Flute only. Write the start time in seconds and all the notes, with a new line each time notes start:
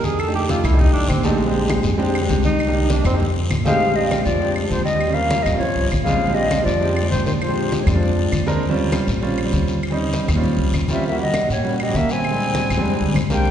3.65 F5
3.96 D#5
4.24 D5
4.69 C5
4.85 D#5
5.14 F5
5.43 D#5
5.58 C#5
6.03 F5
6.34 D#5
6.65 D5
7.10 C5
7.26 C5
7.40 C5
7.83 C#5
7.88 D5
10.92 E5
11.07 E5
11.21 D#5
11.52 C#5
11.80 D#5
11.95 E5
12.11 G#5
13.32 G5